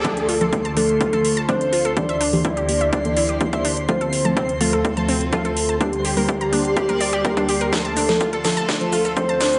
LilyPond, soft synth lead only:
\new Staff \with { instrumentName = "Soft synth lead" } { \time 4/4 \key d \minor \tempo 4 = 125 a'4. a'4. c''4 | d''1 | c''4. a'4. a'4 | g'1 |
a'4. a'4. c''4 | }